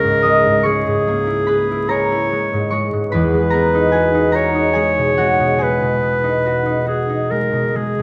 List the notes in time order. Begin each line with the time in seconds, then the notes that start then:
Already playing: C#2 G#3 A#3 E4 G#4 A#4 C#5 G#5 A#5 C#6
0.03 G#2
0.22 G#3 D#5 D#6
0.46 G#2
0.63 G#3 G#4 C#5 C#6
0.87 G#2
1.08 A#3
1.27 E4
1.47 G#4 B4 B5
1.71 E4
1.89 G#4 A#4 C#5 A#5
2.12 E4
2.32 G#3
2.53 G#2
2.71 G#3 C#5 C#6
2.93 G#2
3.10 B4 B5
3.14 E2
3.34 G#3
3.50 B3 A#4 A#5
3.74 D#4
3.92 F#4 G#4 G#5
4.14 D#4
4.32 F#4 A#4 C#5 A#5
4.55 D#4
4.73 G#3 G#4 G#5
4.98 B2
5.18 G#3 F#4 F#5
5.40 B2
5.58 G#3 G#4 B4 G#5
5.82 B2
6.03 B3
6.23 D#4
6.46 F#4
6.66 D#4
6.86 F#4 G#4
7.09 D#4
7.31 G#3 A#4
7.53 B2
7.75 G#3 G#4
7.99 B2